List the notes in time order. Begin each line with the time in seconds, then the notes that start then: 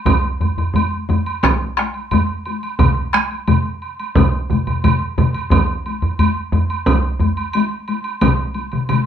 0.05 taiko, taiko low-mid, taiko high, high woodblock
0.24 taiko high
0.41 taiko low-mid, taiko high, high woodblock
0.58 taiko low-mid, taiko high, high woodblock
0.74 taiko low-mid, taiko high, high woodblock
0.93 taiko high
1.09 taiko low-mid, taiko high, high woodblock
1.26 taiko high, high woodblock
1.43 taiko rim, taiko, taiko high, high woodblock
1.61 taiko high
1.77 taiko rim, taiko high, high woodblock
1.94 taiko high, high woodblock
2.11 taiko low-mid, taiko high, high woodblock
2.46 taiko high, high woodblock
2.63 taiko high, high woodblock
2.79 taiko, taiko low-mid, taiko mid, taiko high, high woodblock
2.98 taiko high
3.13 taiko rim, taiko high, high woodblock
3.31 taiko high, high woodblock
3.48 taiko low-mid, taiko mid, taiko high, high woodblock
3.65 taiko high
3.82 high woodblock
4.00 taiko high, high woodblock
4.15 taiko, taiko low-mid, taiko mid, taiko high, high woodblock
4.33 taiko high
4.50 taiko low-mid, taiko mid, taiko high, high woodblock
4.67 taiko low-mid, taiko mid, taiko high, high woodblock
4.84 taiko low-mid, taiko mid, taiko high, high woodblock
5.18 taiko low-mid, taiko mid, taiko high, high woodblock
5.34 taiko high, high woodblock
5.51 taiko, taiko low-mid, taiko high, high woodblock
5.86 taiko high, high woodblock
6.02 taiko low-mid, taiko high, high woodblock
6.19 taiko low-mid, taiko high, high woodblock
6.37 taiko high
6.53 taiko low-mid, taiko high, high woodblock
6.70 taiko high, high woodblock
6.86 taiko, taiko high, high woodblock
7.20 taiko low-mid, taiko high, high woodblock
7.37 taiko high, high woodblock
7.53 taiko high, high woodblock
7.88 taiko high, high woodblock
8.04 taiko high, high woodblock
8.21 taiko, taiko mid, taiko high, high woodblock
8.39 taiko high
8.54 taiko high, high woodblock
8.72 taiko mid, taiko high, high woodblock
8.89 taiko mid, taiko high, high woodblock